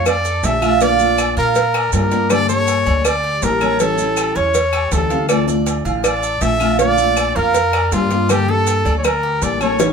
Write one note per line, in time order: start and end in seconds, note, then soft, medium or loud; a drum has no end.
0.00 0.40 F2 medium
0.00 0.24 F5 medium
0.06 0.46 D5 loud
0.06 muted nylon-string guitar stroke medium
0.06 cowbell loud
0.06 low agogo loud
0.06 claves medium
0.06 maracas medium
0.25 0.61 A4 medium
0.25 maracas medium
0.43 1.31 A#1 loud
0.43 0.61 D3 soft
0.43 0.62 A3 medium
0.43 0.62 D4 medium
0.43 0.60 F4 medium
0.43 0.84 E5 loud
0.43 cowbell medium
0.43 low timbale medium
0.43 low agogo medium
0.43 maracas medium
0.61 0.81 A3 medium
0.61 0.80 D4 medium
0.61 0.80 F4 medium
0.61 0.79 F4 medium
0.61 low agogo loud
0.61 claves medium
0.61 maracas soft
0.80 0.99 D3 medium
0.80 0.99 A#3 medium
0.80 0.99 D4 medium
0.80 1.17 F4 medium
0.80 0.98 F4 medium
0.80 1.38 D5 loud
0.80 cowbell loud
0.80 maracas medium
0.99 1.55 A#3 medium
0.99 1.56 D4 medium
0.99 1.55 F4 medium
0.99 low agogo medium
0.99 maracas medium
1.18 1.36 D5 medium
1.18 cowbell medium
1.18 low agogo loud
1.18 claves medium
1.18 maracas medium
1.37 1.89 A#2 medium
1.37 1.73 F4 medium
1.37 1.90 A#4 medium
1.37 maracas soft
1.55 muted nylon-string guitar stroke medium
1.55 cowbell loud
1.55 low agogo medium
1.55 maracas medium
1.74 2.11 D5 medium
1.74 cowbell medium
1.74 low agogo loud
1.74 claves medium
1.92 2.80 G2 medium
1.92 2.10 D3 soft
1.92 2.11 A#3 medium
1.92 2.11 D4 medium
1.92 2.10 F4 medium
1.92 2.32 A#4 loud
1.92 cowbell medium
1.92 low timbale medium
1.92 low agogo medium
1.92 maracas medium
2.11 2.29 A#3 medium
2.11 2.30 D4 medium
2.11 2.29 F4 medium
2.11 2.30 D5 medium
2.11 cowbell medium
2.11 maracas soft
2.30 2.48 D3 medium
2.30 2.48 G3 medium
2.30 2.48 A#3 medium
2.30 2.48 D4 medium
2.30 2.49 G4 medium
2.30 2.47 A4 medium
2.30 2.48 D5 loud
2.30 cowbell loud
2.30 low agogo loud
2.30 claves medium
2.30 maracas medium
2.48 3.05 G3 medium
2.48 3.04 A#3 medium
2.48 3.04 D4 medium
2.48 3.06 A4 medium
2.48 2.85 A4 medium
2.48 3.07 C#5 loud
2.48 maracas medium
2.68 cowbell medium
2.68 low agogo medium
2.68 maracas medium
2.86 3.39 D2 medium
2.86 3.23 D5 medium
2.86 low agogo medium
2.86 maracas soft
3.05 3.45 D5 loud
3.05 muted nylon-string guitar stroke medium
3.05 cowbell loud
3.05 low agogo loud
3.05 claves medium
3.05 maracas medium
3.24 3.60 G4 medium
3.42 4.30 A1 loud
3.42 3.60 G3 soft
3.42 3.60 A#3 medium
3.42 3.60 D4 medium
3.42 3.60 A4 medium
3.42 3.82 A#4 medium
3.42 cowbell medium
3.42 low timbale medium
3.42 low agogo medium
3.42 maracas medium
3.61 3.79 G3 medium
3.61 3.80 A#3 medium
3.61 3.79 C#4 medium
3.61 3.79 D4 medium
3.61 3.79 A4 medium
3.61 low agogo loud
3.61 claves medium
3.61 maracas soft
3.80 3.98 E3 medium
3.80 3.98 G3 medium
3.80 4.16 C#4 medium
3.80 3.98 C#4 medium
3.80 3.97 E4 medium
3.80 4.38 A4 loud
3.80 cowbell loud
3.80 maracas medium
3.98 4.53 G3 medium
3.98 4.54 C#4 medium
3.98 4.54 E4 medium
3.98 low agogo medium
3.98 maracas medium
4.17 4.35 G4 medium
4.17 cowbell medium
4.17 low agogo loud
4.17 claves medium
4.17 maracas medium
4.35 4.88 E2 loud
4.35 4.72 C#4 medium
4.35 4.94 C#5 medium
4.35 maracas soft
4.54 muted nylon-string guitar stroke medium
4.54 cowbell loud
4.54 low agogo medium
4.54 maracas medium
4.73 5.09 G4 medium
4.73 cowbell medium
4.73 low agogo loud
4.73 claves medium
4.91 5.80 D2 loud
4.91 5.10 E3 soft
4.91 5.10 G3 soft
4.91 5.10 C#4 medium
4.91 5.09 E4 medium
4.91 5.28 A4 medium
4.91 cowbell medium
4.91 low timbale medium
4.91 low agogo medium
4.91 maracas medium
5.10 5.28 G3 medium
5.10 5.29 C#4 medium
5.10 5.28 E4 medium
5.10 5.29 F5 medium
5.10 cowbell medium
5.10 maracas soft
5.28 5.47 D3 medium
5.28 5.47 A3 medium
5.28 5.47 D4 medium
5.28 5.46 F4 medium
5.28 5.47 A4 medium
5.28 5.47 D5 medium
5.28 cowbell loud
5.28 low agogo loud
5.28 claves medium
5.28 maracas medium
5.47 6.03 A3 medium
5.47 6.04 D4 medium
5.47 6.04 F4 medium
5.47 5.84 D5 medium
5.47 maracas medium
5.66 cowbell medium
5.66 low agogo medium
5.66 maracas medium
5.85 6.38 A1 loud
5.85 6.22 F5 medium
5.85 low agogo medium
5.85 maracas soft
6.03 6.43 D5 loud
6.03 muted nylon-string guitar stroke medium
6.03 cowbell loud
6.03 low agogo loud
6.03 claves medium
6.03 maracas medium
6.23 6.59 A4 medium
6.23 maracas medium
6.41 7.29 A#1 medium
6.41 6.59 D3 soft
6.41 6.60 A3 medium
6.41 6.59 D4 medium
6.41 6.58 F4 medium
6.41 6.79 E5 loud
6.41 cowbell medium
6.41 low agogo medium
6.41 maracas medium
6.59 6.78 A3 medium
6.59 6.78 D4 medium
6.59 6.78 F4 medium
6.59 low agogo loud
6.59 claves medium
6.59 maracas soft
6.78 6.97 D3 medium
6.78 6.97 A#3 medium
6.78 6.97 D4 medium
6.78 7.16 F4 medium
6.78 6.96 F4 medium
6.78 7.37 D5 loud
6.78 cowbell loud
6.78 maracas medium
6.97 7.54 A#3 medium
6.97 7.55 D4 medium
6.97 7.53 F4 medium
6.97 low agogo medium
6.97 maracas medium
7.17 7.35 D5 medium
7.17 cowbell medium
7.17 low agogo loud
7.17 claves medium
7.17 maracas medium
7.35 7.88 F2 loud
7.35 7.72 F4 medium
7.35 7.95 A#4 loud
7.35 maracas soft
7.54 muted nylon-string guitar stroke medium
7.54 cowbell loud
7.54 low agogo medium
7.54 maracas medium
7.73 8.09 D5 medium
7.73 cowbell medium
7.73 low agogo loud
7.73 claves medium
7.92 8.80 G2 medium
7.92 8.10 D3 soft
7.92 8.10 A#3 medium
7.92 8.11 D4 medium
7.92 8.32 F4 loud
7.92 8.09 F4 medium
7.92 cowbell medium
7.92 low timbale medium
7.92 low agogo medium
7.92 maracas medium
8.10 8.29 A#3 medium
8.10 8.29 D4 medium
8.10 8.29 F4 medium
8.10 8.29 D5 medium
8.10 cowbell medium
8.10 maracas soft
8.29 8.47 D3 medium
8.29 8.47 G3 medium
8.29 8.48 A#3 medium
8.29 8.47 D4 medium
8.29 8.48 G4 medium
8.29 8.51 G4 loud
8.29 8.46 A4 medium
8.29 cowbell loud
8.29 low agogo loud
8.29 claves medium
8.29 maracas medium
8.48 9.04 G3 medium
8.48 9.04 A#3 medium
8.48 9.04 D4 medium
8.48 9.05 A4 medium
8.48 8.85 A4 medium
8.48 8.97 A4 loud
8.67 cowbell medium
8.67 low agogo medium
8.67 maracas medium
8.85 9.38 D2 medium
8.85 9.22 D5 medium
8.85 low agogo medium
8.85 maracas soft
8.98 9.06 C#5 medium
9.04 9.45 A#4 medium
9.04 muted nylon-string guitar stroke medium
9.04 cowbell loud
9.04 low agogo loud
9.04 claves medium
9.04 maracas medium
9.23 9.60 G4 medium
9.41 9.93 A1 medium
9.41 9.60 G3 medium
9.41 9.60 A#3 medium
9.41 9.60 D4 medium
9.41 9.59 A4 medium
9.41 9.61 D5 loud
9.41 cowbell medium
9.41 low agogo medium
9.41 maracas medium
9.60 9.79 G3 medium
9.60 9.79 A#3 medium
9.60 9.79 C#4 medium
9.60 9.79 D4 medium
9.60 9.79 A4 medium
9.60 9.93 C#5 medium
9.60 low agogo loud
9.60 claves medium
9.60 maracas soft
9.79 9.93 E3 medium
9.79 9.93 G3 medium
9.79 9.93 C#4 medium
9.79 9.93 E4 medium
9.79 cowbell loud
9.79 high bongo medium
9.79 high timbale medium
9.79 maracas medium